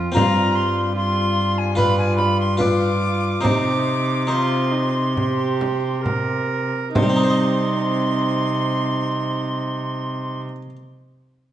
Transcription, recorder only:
0.14 A#5
0.55 C6
0.96 C6
1.58 G#5
1.77 B5
1.99 G#5
2.17 B5
2.40 C6
2.59 D6
3.44 D6
4.30 C6
6.96 C6

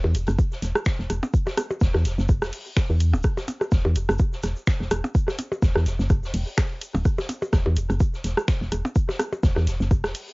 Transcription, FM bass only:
0.04 E2
0.15 E1
0.28 F#1
0.62 E1
0.99 E1
1.10 E1
1.81 E1
1.95 E2
2.05 E1
2.18 F#1
2.42 E1
2.90 E2
3.14 D1
3.72 E1
3.85 E2
3.96 E1
4.09 F#1
4.43 E1
4.80 E1
4.91 E1
5.62 E1
5.76 E2
5.86 E1
5.99 F#1
6.23 E1
6.34 E1
6.95 D1
7.53 E1
7.66 E2
7.77 E1
7.90 F#1
8.24 E1
8.61 E1
8.72 E1
9.43 E1
9.57 E2
9.67 E1
9.80 F#1
10.04 E1

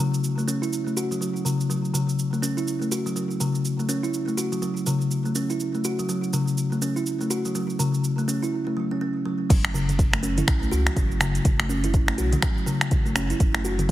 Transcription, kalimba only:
0.00 C#3
0.38 A3
0.48 C#4
0.62 E4
0.87 A3
0.97 F#4
1.11 F#3
1.21 F#3
1.45 C#3
1.70 F#3
1.94 C#3
2.33 A3
2.42 C#4
2.57 E4
2.82 A3
2.92 F#4
3.06 F#3
3.16 F#3
3.40 C#3
3.79 A3
3.89 C#4
4.03 E4
4.28 A3
4.37 F#4
4.52 F#3
4.62 F#3
4.87 C#3
5.26 A3
5.36 C#4
5.50 E4
5.75 A3
5.85 F#4
5.99 F#3
6.09 F#3
6.33 C#3
6.72 A3
6.82 C#4
6.96 E4
7.21 A3
7.30 F#4
7.45 F#3
7.55 F#3
7.79 C#3
8.18 A3
8.28 C#4
8.43 E4
8.67 A3
8.77 F#3
8.91 C#4
9.01 C#4
9.25 F#3
9.50 F#3
9.74 C#3
10.13 A3
10.23 C#4
10.37 E4
10.62 A3
10.71 F#4
10.86 F#3
10.96 F#3
11.20 C#3
11.59 A3
11.69 C#4
11.84 E4
12.08 A3
12.18 F#4
12.32 F#3
12.42 F#3
12.66 C#3
13.06 A3
13.15 C#4
13.30 E4
13.54 A3
13.65 F#4
13.79 F#3

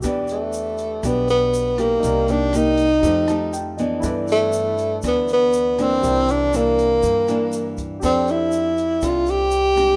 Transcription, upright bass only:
0.04 E2
1.03 B1
2.03 C2
3.03 F2
4.03 G2
5.04 D2
6.03 C2
7.03 G2
8.03 F2
9.03 C2

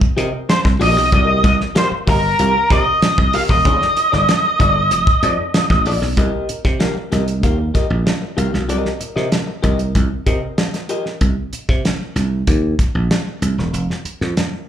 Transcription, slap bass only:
0.17 C3
0.65 C2
0.81 A#1
0.96 B1
1.12 C2
1.44 C2
1.91 muted slap bass stroke
2.07 G1
2.39 C2
2.71 C3
3.02 muted slap bass stroke
3.18 C2
3.49 E1
3.65 F1
4.13 G1
4.60 G1
4.91 F1
5.23 F2
5.70 A1
5.86 A#1
6.02 B1
6.17 C2
6.49 muted slap bass stroke
6.65 C3
7.12 C2
7.43 D#2
7.90 A#1
8.37 C2
8.54 B1
8.69 C2
9.01 muted slap bass stroke
9.16 C3
9.64 C2
9.95 C2
10.26 C3
11.21 C2
11.53 muted slap bass stroke
11.69 C3
12.16 C2
12.47 D#2
12.95 A#1
13.42 C2
13.58 E1
13.73 F1
14.05 muted slap bass stroke
14.21 F2

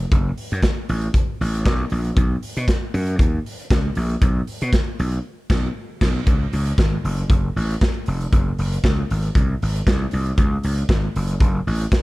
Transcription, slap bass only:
0.12 F#1
0.52 F#2
0.89 A1
1.41 A1
1.66 B1
1.92 A#1
2.17 B1
2.57 B2
2.94 F#2
3.19 D#2
3.71 C#2
3.96 A#1
4.22 B1
4.62 B2
4.99 B1
5.50 B1
6.02 B1
6.27 C#2
6.53 C#2
6.78 G#1
7.04 F#1
7.30 F#1
7.56 A1
8.08 F1
8.33 F#1
8.59 F#1
8.84 C#2
9.11 G#1
9.36 C2
9.62 G#1
9.87 C2
10.13 C2
10.38 C#2
10.64 C#2
10.89 G#1
11.16 F#1
11.41 F#1
11.67 A1

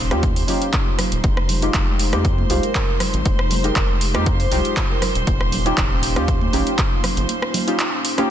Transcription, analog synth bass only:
Already playing: D#1
0.11 D#2
1.12 D#1
1.24 F1
1.74 F1
2.13 F2
2.50 C2
3.14 G#1
3.26 F1
3.76 F1
4.15 F2
4.52 C2
5.15 D#1
5.27 D#1
5.78 D#1
6.16 D#2
6.53 A#1
7.17 G1

